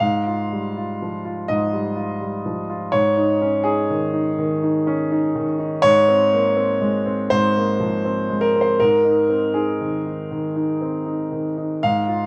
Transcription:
0.00 G#2 F5
0.27 F4
0.52 G3
0.77 F4
1.02 F3
1.25 F4
1.48 G#2 D#5
1.73 G3
1.96 F4
2.21 G3
2.46 F3
2.70 F4
2.92 G#2 C#5
3.17 D#4
3.42 C#4
3.64 D#4 G#4
3.90 D#3
4.13 D#4
4.38 D#3
4.63 D#4
4.87 C#4
5.12 D#4
5.35 D#3
5.59 D#4
5.82 G#2 C#5
6.09 C4
6.33 A#3
6.56 C4
6.81 G#3
7.06 C4
7.30 G#2 C5
7.56 A#3
7.80 F3
8.05 C4
8.30 G#3
8.41 A#4
8.56 C4
8.61 C5
8.80 G#2 A#4
9.04 D#4
9.29 C4
9.54 D#4 G#4
9.81 D#3
10.06 D#4
10.31 D#3
10.56 D#4
10.81 C4
11.06 D#4
11.32 D#3
11.57 D#4
11.83 G#2 F5
12.08 F4

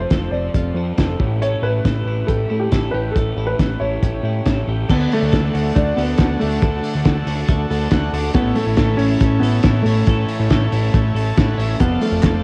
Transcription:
Already playing: F3 C4 F4 A4 C5
0.00 C5
0.10 F1 A4, kick, snare, closed hi-hat
0.31 F1 C4 F4 A4 C5 D5
0.54 F1 F4, kick, closed hi-hat
0.74 F2 C4 F4 A4 C5
0.96 F1 C4 F4 A4 C5, kick, snare, closed hi-hat
1.19 A1 A2 C#4 E4 G4 A4, kick
1.41 A2 A3 C#4 E4 G4 A4 C#5, closed hi-hat
1.62 A1 C#4 E4 G4 A4 B4
1.85 A1 A4, kick, snare, closed hi-hat
2.05 A1 C#4 E4 G4 A4
2.27 A1 G4 A4, kick, closed hi-hat
2.49 A2 C#4 E4 G4 A4
2.60 G4
2.71 A1 C#4 E4 G4 A4, kick, snare, closed hi-hat
2.91 A1 C#4 E4 G4 A4 B4
3.11 A2 A3 C#4 E4 G4 A4
3.16 A1, kick, closed hi-hat
3.37 A1 C#4 E4 G4 A4
3.47 B4
3.59 A1 A4, kick, snare, closed hi-hat
3.80 A1 C#4 E4 G4 A4 C#5
4.03 A1 G4, kick, closed hi-hat
4.23 A2 C#4 E4 G4 A4
4.44 A1 C#4 E4 G4 A4, kick, snare, closed hi-hat
4.67 A1 C#4 E4 G4 A4
4.88 D2 D3 A3 B3 D4 F#4 A4, kick, crash
5.12 A3 D4, open hi-hat
5.23 D2 D4 F#4 A4
5.32 D2 A4, kick, snare, closed hi-hat
5.43 D4 F#4 A4
5.53 D2 F#4, open hi-hat
5.75 D2 A3 D4, kick, closed hi-hat
5.96 D2 A3 B3 D4 F#4 A4, open hi-hat
6.18 D2 A3 D4 F#4, kick, snare, closed hi-hat
6.22 A4
6.40 D2 A3 D4 F#4 A4, open hi-hat
6.62 D2 D3 A3 D4 F#4 A4, kick, closed hi-hat
6.83 D4, open hi-hat
6.95 D2 D4 F#4 A4
7.04 D2 A4, kick, snare, closed hi-hat
7.17 D4 F#4 A4
7.26 D2 F#4, open hi-hat
7.48 D2 A3, kick, closed hi-hat
7.70 D2 A3 D4 F#4 A4 A5, open hi-hat
7.91 D2 A3 D4 F#4 A4 F#5, kick, snare, closed hi-hat
8.13 D2 A3 D4 F#4 A4 D5, open hi-hat
8.34 A1 A2 E3 A3 B3 C#4 E4 A4, kick, closed hi-hat
8.55 A3 C#4, open hi-hat
8.67 A1 A3 C#4 E4 A4
8.77 A1 A4, kick, snare, closed hi-hat
8.87 A3 C#4 E4 A4
8.97 A1 C#4 E4, open hi-hat
9.21 A1 A3, kick, closed hi-hat
9.40 A1 A3 B3 C#4 E4, open hi-hat
9.44 A4
9.63 A1 A3 C#4 E4 A4, kick, snare, closed hi-hat
9.82 A1 A3 C#4, open hi-hat
9.86 E4 A4
10.06 A1 A2 E3 A3 C#4 E4 A4, kick, closed hi-hat
10.29 C#4, open hi-hat
10.39 A1 A3 C#4 E4 A4
10.50 A1 A4, kick, snare, closed hi-hat
10.61 A3 C#4 E4 A4
10.72 A1 E4, open hi-hat
10.94 A1 A3, kick, closed hi-hat
11.15 A1 A3 C#4 E4 A4 A5, open hi-hat
11.36 A1 A3 C#4 E4 A4 F#5, kick, snare, closed hi-hat
11.58 A1 A3 C#4 E4 A4 E5, open hi-hat
11.79 F1 D3 F3 B3 C4 D4 F4 A4 C5, kick, closed hi-hat
12.01 A3 F4, open hi-hat
12.12 F1 C4 F4 A4 C5
12.23 F1 A4, kick, snare, clap, closed hi-hat
12.33 C4 F4 A4 C5

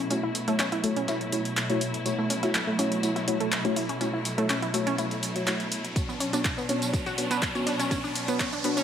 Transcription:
Already playing: B2 F#3 A3 E4, riser
0.10 A3 C#4 E4 F#4 C#5, closed hi-hat, tambourine
0.23 E4
0.35 open hi-hat, tambourine
0.48 A3 E4 F#4 C#5, closed hi-hat
0.59 C#4, snare, clap, closed hi-hat, tambourine
0.72 E4, closed hi-hat
0.84 A3 E4 F#4 C#5, open hi-hat, tambourine
0.97 C#4, closed hi-hat
1.08 A3 E4 F#4 C#5, snare, closed hi-hat, tambourine
1.21 closed hi-hat
1.32 A3 E4 F#4 C#5, open hi-hat, tambourine
1.45 closed hi-hat
1.57 snare, clap, closed hi-hat, tambourine
1.70 A3 E4 F#4 C#5, closed hi-hat
1.81 open hi-hat, tambourine
1.94 closed hi-hat
2.06 A3 E4 F#4 C#5, closed hi-hat, tambourine
2.19 A3
2.30 C#4, open hi-hat, tambourine
2.43 A3 E4 F#4 C#5, snare, closed hi-hat
2.54 snare, clap, closed hi-hat, tambourine
2.67 A3
2.79 A3 C#4 E4 F#4 C#5, open hi-hat, tambourine
2.92 closed hi-hat
3.03 A3 E4 F#4 C#5, closed hi-hat, tambourine
3.16 E4, snare, closed hi-hat
3.28 A3 E4 F#4 C#5, open hi-hat
3.40 A3, closed hi-hat
3.52 snare, clap, closed hi-hat, tambourine
3.65 A3 C#4 E4 F#4 C#5, closed hi-hat
3.76 E4, open hi-hat
3.89 C#4, closed hi-hat
4.01 A3 C#4 E4 F#4 C#5, closed hi-hat, tambourine
4.14 E4
4.25 open hi-hat, tambourine
4.38 A3 E4 F#4 C#5, closed hi-hat
4.49 C#4, snare, clap, closed hi-hat, tambourine
4.62 E4, closed hi-hat
4.74 A3 E4 F#4 C#5, open hi-hat, tambourine
4.87 C#4, closed hi-hat
4.98 A3 E4 F#4 C#5, closed hi-hat, tambourine
5.11 closed hi-hat
5.23 open hi-hat, tambourine
5.36 A3 E4 F#4 C#5, closed hi-hat
5.47 A3 E4 F#4 C#5, snare, clap, closed hi-hat, tambourine
5.60 closed hi-hat
5.72 open hi-hat, tambourine
5.85 closed hi-hat
5.96 B2 B3 C#4 D4 F#4 C#5, kick, closed hi-hat, tambourine
6.09 B3, tambourine
6.20 C#4, open hi-hat, tambourine
6.33 B3 D4 F#4 C#5, snare, closed hi-hat, tambourine
6.45 kick, snare, clap, closed hi-hat, tambourine
6.58 B3, tambourine
6.69 B3 C#4 D4 F#4 C#5, open hi-hat, tambourine
6.82 closed hi-hat, tambourine
6.93 B3 F#4, kick, closed hi-hat, tambourine
7.06 F#4, snare, closed hi-hat, tambourine
7.18 B3 D4 F#4 C#5, open hi-hat, tambourine
7.31 B3, snare, closed hi-hat, tambourine
7.42 kick, snare, clap, closed hi-hat, tambourine
7.55 B3 C#4 D4 F#4 C#5, closed hi-hat, tambourine
7.67 D4, open hi-hat
7.79 C#4, closed hi-hat, tambourine
7.91 B3 C#4 D4 F#4 C#5, kick, closed hi-hat, tambourine
8.04 D4, tambourine
8.15 open hi-hat, tambourine
8.28 B3 D4 F#4 C#5, closed hi-hat, tambourine
8.40 C#4, kick, snare, clap, closed hi-hat, tambourine
8.53 D4, closed hi-hat, tambourine
8.64 B3 D4 F#4 C#5, open hi-hat, tambourine
8.77 C#4, closed hi-hat, tambourine

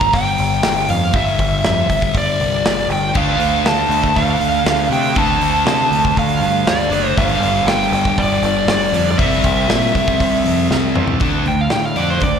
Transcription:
Already playing: G1 G2 D3 G3 D4 A#5
0.01 kick
0.13 G1 G5, kick, open hi-hat
0.38 G1, open hi-hat
0.63 G1, snare, open hi-hat
0.89 F2 F5, open hi-hat
1.13 G1 G2 D3 G3 E5, kick, open hi-hat
1.39 G1, kick, open hi-hat
1.64 F2, snare, open hi-hat
1.89 G1, kick, open hi-hat
2.02 kick
2.14 G1 D5, kick, open hi-hat
2.40 C2, open hi-hat
2.65 G1, snare, open hi-hat
2.89 G1 G5, open hi-hat
3.13 D2 D3 A3 D4, kick, crash
3.17 F5
3.39 D2, open hi-hat
3.64 D2 A5, snare, open hi-hat
3.89 D2, open hi-hat
4.04 kick
4.16 D2 F5, kick, open hi-hat
4.40 D2, open hi-hat
4.66 D2, snare, open hi-hat
4.90 C3 A3 D4 G5, open hi-hat
4.95 D3
5.15 D2 D3 A3 D4 A5, kick, open hi-hat
5.41 D2, open hi-hat
5.65 C3, snare, open hi-hat
5.91 D2, open hi-hat
6.05 kick
6.17 D2 F5, kick, open hi-hat
6.40 G2, open hi-hat
6.66 D2 D5, snare, open hi-hat
6.89 F#1 A3 D4, open hi-hat
6.95 D3
7.15 G1 G2 D3 G3 F5, kick, open hi-hat
7.40 G1, open hi-hat
7.65 G1 G5, snare, open hi-hat
7.92 G1, open hi-hat
8.05 kick
8.18 G1 D5, kick, open hi-hat
8.42 G1, open hi-hat
8.67 G1 D5, snare, open hi-hat
8.92 F2 D3 G3, open hi-hat
8.97 G2
9.11 D5
9.17 C2 C3 G3 C4 E5, kick, open hi-hat
9.44 C2, kick, open hi-hat
9.68 A#2, snare, open hi-hat
9.95 C2, kick, open hi-hat
10.08 kick
10.20 C2, kick, open hi-hat
10.44 F2, open hi-hat
10.70 C2, snare
10.94 E2 G3 C4, mid tom
10.98 C3
11.07 floor tom
11.20 D2 D3 A3 D4, kick, open hi-hat
11.46 D2 D3 A3 G5, open hi-hat
11.61 F5
11.70 A2 D3 A3 G5, snare, open hi-hat
11.86 F5
11.96 F2 D3 A3 D4 D5, open hi-hat
12.10 C5
12.20 D2 D3 A3 D5, kick, open hi-hat

